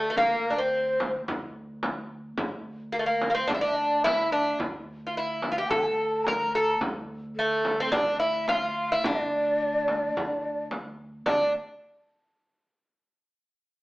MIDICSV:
0, 0, Header, 1, 5, 480
1, 0, Start_track
1, 0, Tempo, 554529
1, 146, Time_signature, 4, 2, 24, 8
1, 11969, End_track
2, 0, Start_track
2, 0, Title_t, "Ney"
2, 0, Program_c, 0, 77
2, 0, Note_on_c, 0, 69, 67
2, 141, Note_on_c, 0, 70, 77
2, 154, Note_off_c, 0, 69, 0
2, 489, Note_on_c, 0, 72, 73
2, 502, Note_off_c, 0, 70, 0
2, 977, Note_off_c, 0, 72, 0
2, 2549, Note_on_c, 0, 70, 64
2, 2656, Note_off_c, 0, 70, 0
2, 2661, Note_on_c, 0, 70, 61
2, 2904, Note_on_c, 0, 72, 74
2, 2917, Note_off_c, 0, 70, 0
2, 3013, Note_on_c, 0, 74, 68
2, 3026, Note_off_c, 0, 72, 0
2, 3122, Note_off_c, 0, 74, 0
2, 3127, Note_on_c, 0, 74, 75
2, 3181, Note_on_c, 0, 76, 66
2, 3194, Note_off_c, 0, 74, 0
2, 3233, Note_on_c, 0, 75, 68
2, 3246, Note_off_c, 0, 76, 0
2, 3261, Note_on_c, 0, 74, 74
2, 3270, Note_off_c, 0, 75, 0
2, 3487, Note_off_c, 0, 74, 0
2, 3491, Note_on_c, 0, 76, 75
2, 3942, Note_off_c, 0, 76, 0
2, 4437, Note_on_c, 0, 76, 67
2, 4934, Note_on_c, 0, 81, 76
2, 4947, Note_off_c, 0, 76, 0
2, 5404, Note_on_c, 0, 82, 79
2, 5417, Note_off_c, 0, 81, 0
2, 5893, Note_off_c, 0, 82, 0
2, 6370, Note_on_c, 0, 69, 74
2, 6822, Note_off_c, 0, 69, 0
2, 6860, Note_on_c, 0, 74, 75
2, 7096, Note_on_c, 0, 76, 74
2, 7109, Note_off_c, 0, 74, 0
2, 7344, Note_on_c, 0, 77, 85
2, 7357, Note_off_c, 0, 76, 0
2, 7824, Note_off_c, 0, 77, 0
2, 7838, Note_on_c, 0, 74, 82
2, 9239, Note_off_c, 0, 74, 0
2, 9757, Note_on_c, 0, 75, 85
2, 9788, Note_on_c, 0, 74, 92
2, 9797, Note_off_c, 0, 75, 0
2, 9976, Note_off_c, 0, 74, 0
2, 11969, End_track
3, 0, Start_track
3, 0, Title_t, "Bouzouki"
3, 0, Program_c, 1, 25
3, 87, Note_on_c, 1, 57, 73
3, 147, Note_off_c, 1, 57, 0
3, 151, Note_on_c, 1, 58, 90
3, 435, Note_on_c, 1, 62, 57
3, 457, Note_off_c, 1, 58, 0
3, 501, Note_off_c, 1, 62, 0
3, 505, Note_on_c, 1, 60, 74
3, 952, Note_off_c, 1, 60, 0
3, 2532, Note_on_c, 1, 58, 72
3, 2586, Note_off_c, 1, 58, 0
3, 2590, Note_on_c, 1, 57, 59
3, 2647, Note_off_c, 1, 57, 0
3, 2650, Note_on_c, 1, 58, 71
3, 2845, Note_off_c, 1, 58, 0
3, 2856, Note_on_c, 1, 58, 64
3, 2893, Note_off_c, 1, 58, 0
3, 2897, Note_on_c, 1, 60, 81
3, 3008, Note_on_c, 1, 62, 86
3, 3023, Note_off_c, 1, 60, 0
3, 3065, Note_off_c, 1, 62, 0
3, 3068, Note_on_c, 1, 64, 68
3, 3123, Note_off_c, 1, 64, 0
3, 3127, Note_on_c, 1, 62, 83
3, 3496, Note_off_c, 1, 62, 0
3, 3500, Note_on_c, 1, 64, 97
3, 3738, Note_off_c, 1, 64, 0
3, 3742, Note_on_c, 1, 62, 76
3, 3965, Note_off_c, 1, 62, 0
3, 4386, Note_on_c, 1, 65, 55
3, 4454, Note_off_c, 1, 65, 0
3, 4478, Note_on_c, 1, 64, 74
3, 4772, Note_off_c, 1, 64, 0
3, 4775, Note_on_c, 1, 65, 61
3, 4813, Note_off_c, 1, 65, 0
3, 4831, Note_on_c, 1, 67, 81
3, 4935, Note_off_c, 1, 67, 0
3, 4939, Note_on_c, 1, 69, 89
3, 5431, Note_off_c, 1, 69, 0
3, 5434, Note_on_c, 1, 70, 91
3, 5667, Note_off_c, 1, 70, 0
3, 5671, Note_on_c, 1, 69, 84
3, 5890, Note_off_c, 1, 69, 0
3, 6395, Note_on_c, 1, 57, 80
3, 6750, Note_off_c, 1, 57, 0
3, 6754, Note_on_c, 1, 60, 86
3, 6854, Note_on_c, 1, 62, 90
3, 6871, Note_off_c, 1, 60, 0
3, 7081, Note_off_c, 1, 62, 0
3, 7094, Note_on_c, 1, 64, 78
3, 7342, Note_off_c, 1, 64, 0
3, 7345, Note_on_c, 1, 65, 93
3, 7716, Note_off_c, 1, 65, 0
3, 7720, Note_on_c, 1, 64, 94
3, 7824, Note_off_c, 1, 64, 0
3, 7839, Note_on_c, 1, 62, 86
3, 9239, Note_off_c, 1, 62, 0
3, 9748, Note_on_c, 1, 62, 78
3, 9971, Note_off_c, 1, 62, 0
3, 11969, End_track
4, 0, Start_track
4, 0, Title_t, "Upright bass"
4, 0, Program_c, 2, 32
4, 0, Note_on_c, 2, 38, 85
4, 113, Note_off_c, 2, 38, 0
4, 138, Note_on_c, 2, 38, 88
4, 1067, Note_off_c, 2, 38, 0
4, 1110, Note_on_c, 2, 38, 83
4, 2032, Note_off_c, 2, 38, 0
4, 2064, Note_on_c, 2, 38, 90
4, 2988, Note_off_c, 2, 38, 0
4, 3018, Note_on_c, 2, 38, 78
4, 3945, Note_off_c, 2, 38, 0
4, 3971, Note_on_c, 2, 38, 96
4, 4901, Note_off_c, 2, 38, 0
4, 4930, Note_on_c, 2, 38, 89
4, 5861, Note_off_c, 2, 38, 0
4, 5892, Note_on_c, 2, 38, 91
4, 6823, Note_off_c, 2, 38, 0
4, 6863, Note_on_c, 2, 38, 91
4, 7789, Note_off_c, 2, 38, 0
4, 7830, Note_on_c, 2, 38, 91
4, 8754, Note_off_c, 2, 38, 0
4, 8796, Note_on_c, 2, 38, 81
4, 9718, Note_off_c, 2, 38, 0
4, 9757, Note_on_c, 2, 38, 89
4, 9976, Note_off_c, 2, 38, 0
4, 11969, End_track
5, 0, Start_track
5, 0, Title_t, "Frame drum"
5, 144, Note_on_c, 9, 64, 67
5, 231, Note_off_c, 9, 64, 0
5, 867, Note_on_c, 9, 64, 72
5, 953, Note_off_c, 9, 64, 0
5, 1109, Note_on_c, 9, 64, 85
5, 1196, Note_off_c, 9, 64, 0
5, 1582, Note_on_c, 9, 64, 77
5, 1669, Note_off_c, 9, 64, 0
5, 2056, Note_on_c, 9, 64, 85
5, 2143, Note_off_c, 9, 64, 0
5, 2783, Note_on_c, 9, 64, 70
5, 2870, Note_off_c, 9, 64, 0
5, 3027, Note_on_c, 9, 64, 81
5, 3113, Note_off_c, 9, 64, 0
5, 3510, Note_on_c, 9, 64, 78
5, 3597, Note_off_c, 9, 64, 0
5, 3980, Note_on_c, 9, 64, 77
5, 4067, Note_off_c, 9, 64, 0
5, 4695, Note_on_c, 9, 64, 65
5, 4782, Note_off_c, 9, 64, 0
5, 4937, Note_on_c, 9, 64, 78
5, 5024, Note_off_c, 9, 64, 0
5, 5424, Note_on_c, 9, 64, 69
5, 5510, Note_off_c, 9, 64, 0
5, 5896, Note_on_c, 9, 64, 82
5, 5983, Note_off_c, 9, 64, 0
5, 6621, Note_on_c, 9, 64, 64
5, 6707, Note_off_c, 9, 64, 0
5, 6854, Note_on_c, 9, 64, 89
5, 6940, Note_off_c, 9, 64, 0
5, 7338, Note_on_c, 9, 64, 64
5, 7424, Note_off_c, 9, 64, 0
5, 7827, Note_on_c, 9, 64, 90
5, 7914, Note_off_c, 9, 64, 0
5, 8552, Note_on_c, 9, 64, 60
5, 8638, Note_off_c, 9, 64, 0
5, 8803, Note_on_c, 9, 64, 79
5, 8890, Note_off_c, 9, 64, 0
5, 9271, Note_on_c, 9, 64, 63
5, 9358, Note_off_c, 9, 64, 0
5, 9746, Note_on_c, 9, 64, 78
5, 9833, Note_off_c, 9, 64, 0
5, 11969, End_track
0, 0, End_of_file